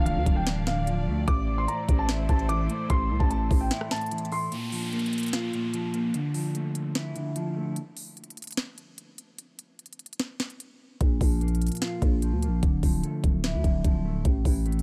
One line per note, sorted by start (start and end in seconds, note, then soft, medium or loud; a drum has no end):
0.00 0.18 C1 loud
0.00 0.66 D3 medium
0.00 1.26 D3 medium
0.00 0.46 F3 medium
0.00 1.26 D4 medium
0.00 4.48 D5 medium
0.00 1.24 F5 medium
0.06 1.06 A3 medium
0.06 0.34 F5 medium
0.06 closed hi-hat medium
0.16 0.26 D2 loud
0.26 1.09 D1 loud
0.26 kick loud
0.26 closed hi-hat medium
0.36 0.45 G5 medium
0.47 0.87 E3 medium
0.47 snare loud
0.47 closed hi-hat medium
0.67 1.27 D3 medium
0.67 1.24 F5 medium
0.67 snare loud
0.67 closed hi-hat medium
0.87 1.28 F3 medium
0.87 closed hi-hat medium
1.07 1.27 D2 loud
1.07 1.28 A3 medium
1.28 1.67 A1 loud
1.28 2.28 A2 loud
1.28 4.49 A3 medium
1.28 4.49 E4 medium
1.28 4.49 C5 medium
1.28 1.56 D6 loud
1.28 kick loud
1.28 closed hi-hat medium
1.48 2.48 E3 medium
1.58 1.66 C6 medium
1.68 2.68 A3 medium
1.68 1.97 A#5 medium
1.68 closed hi-hat medium
1.89 2.27 A1 loud
1.89 kick loud
1.89 closed hi-hat medium
1.99 2.07 A5 medium
2.09 3.10 E4 medium
2.09 snare loud
2.09 closed hi-hat medium
2.29 2.68 A1 loud
2.29 2.88 A2 medium
2.29 2.46 A5 medium
2.29 kick medium
2.29 closed hi-hat medium
2.39 closed hi-hat soft
2.49 3.09 E3 medium
2.49 2.87 D6 medium
2.49 closed hi-hat medium
2.69 3.29 A3 medium
2.69 closed hi-hat medium
2.90 3.12 A1 loud
2.90 3.90 A2 medium
2.90 3.19 C6 loud
2.90 kick loud
2.90 closed hi-hat medium
3.10 3.20 C2 loud
3.10 4.10 E3 medium
3.20 3.49 A1 loud
3.20 3.28 A5 medium
3.20 kick medium
3.30 4.30 A3 medium
3.30 3.59 A5 medium
3.30 closed hi-hat medium
3.51 3.70 A1 loud
3.51 kick loud
3.51 open hi-hat medium
3.61 3.89 G5 medium
3.71 4.52 E4 medium
3.71 snare loud
3.71 closed hi-hat medium
3.81 cross-stick medium
3.91 4.51 A2 medium
3.91 4.29 A5 medium
3.91 snare medium
3.91 closed hi-hat soft
3.96 closed hi-hat soft
4.01 closed hi-hat soft
4.06 closed hi-hat medium
4.11 4.52 E3 medium
4.11 closed hi-hat medium
4.18 closed hi-hat medium
4.25 closed hi-hat soft
4.32 4.52 A3 medium
4.32 4.49 C6 medium
4.32 open hi-hat medium
4.52 5.52 A#2 medium
4.52 closed hi-hat medium
4.52 downlifter medium
4.72 5.72 F3 medium
4.72 open hi-hat medium
4.93 5.93 A#3 medium
4.93 closed hi-hat soft
4.99 closed hi-hat soft
5.06 closed hi-hat soft
5.13 closed hi-hat medium
5.18 closed hi-hat medium
5.20 closed hi-hat medium
5.23 closed hi-hat medium
5.26 closed hi-hat medium
5.28 closed hi-hat medium
5.33 6.14 F4 medium
5.33 snare loud
5.33 closed hi-hat medium
5.53 6.14 A#2 medium
5.53 closed hi-hat medium
5.73 6.14 F3 medium
5.73 closed hi-hat medium
5.94 6.14 A#3 medium
5.94 closed hi-hat medium
6.14 7.14 D3 medium
6.14 closed hi-hat medium
6.34 7.35 F3 medium
6.34 open hi-hat medium
6.55 7.55 A3 medium
6.55 closed hi-hat medium
6.75 closed hi-hat medium
6.95 7.76 E4 medium
6.95 snare loud
6.95 closed hi-hat medium
7.16 7.76 D3 medium
7.16 closed hi-hat medium
7.36 7.76 F3 medium
7.36 closed hi-hat medium
7.56 7.76 A3 medium
7.76 closed hi-hat medium
7.97 open hi-hat medium
8.17 closed hi-hat soft
8.24 closed hi-hat soft
8.30 closed hi-hat soft
8.37 closed hi-hat medium
8.42 closed hi-hat medium
8.44 closed hi-hat medium
8.47 closed hi-hat medium
8.51 closed hi-hat medium
8.52 closed hi-hat medium
8.57 snare loud
8.57 closed hi-hat medium
8.78 closed hi-hat medium
8.98 closed hi-hat medium
9.18 closed hi-hat medium
9.38 closed hi-hat medium
9.59 closed hi-hat medium
9.79 closed hi-hat soft
9.86 closed hi-hat soft
9.93 closed hi-hat soft
9.99 closed hi-hat medium
10.06 closed hi-hat medium
10.13 closed hi-hat medium
10.19 snare loud
10.19 closed hi-hat medium
10.40 snare medium
10.40 closed hi-hat soft
10.50 closed hi-hat soft
10.60 closed hi-hat medium
11.00 11.20 A#1 loud
11.00 12.01 A#2 medium
11.00 kick loud
11.00 closed hi-hat medium
11.21 11.70 A#1 loud
11.21 12.21 F3 medium
11.21 kick medium
11.21 open hi-hat medium
11.41 12.41 A#3 medium
11.41 closed hi-hat soft
11.48 closed hi-hat soft
11.55 closed hi-hat soft
11.62 closed hi-hat medium
11.67 closed hi-hat medium
11.68 closed hi-hat medium
11.72 closed hi-hat medium
11.75 closed hi-hat medium
11.77 closed hi-hat medium
11.82 12.63 F4 medium
11.82 snare loud
11.82 closed hi-hat medium
12.02 12.34 A#1 loud
12.02 12.62 A#2 medium
12.02 kick medium
12.02 closed hi-hat medium
12.22 12.63 F3 medium
12.22 closed hi-hat medium
12.32 12.49 D2 loud
12.43 12.63 A#3 medium
12.43 closed hi-hat medium
12.48 12.62 A#1 loud
12.63 12.82 D1 loud
12.63 13.63 D3 medium
12.63 kick loud
12.63 closed hi-hat medium
12.83 13.03 D1 loud
12.83 13.83 F3 medium
12.83 kick medium
12.83 open hi-hat medium
13.03 14.03 A3 medium
13.03 closed hi-hat medium
13.24 13.56 D1 loud
13.24 kick loud
13.24 closed hi-hat medium
13.44 14.25 E4 medium
13.44 snare loud
13.44 closed hi-hat medium
13.54 13.64 D2 loud
13.64 13.84 D1 loud
13.64 14.25 D3 medium
13.64 kick medium
13.64 closed hi-hat medium
13.84 14.23 D1 loud
13.84 14.25 F3 medium
13.84 kick loud
13.84 closed hi-hat medium
14.05 14.25 A3 medium
14.25 14.45 A1 loud
14.25 14.82 A2 medium
14.25 kick loud
14.25 closed hi-hat medium
14.45 14.82 A1 loud
14.45 14.82 E3 medium
14.45 kick medium
14.45 open hi-hat medium
14.66 14.82 A3 medium
14.66 closed hi-hat soft
14.72 closed hi-hat soft
14.79 closed hi-hat soft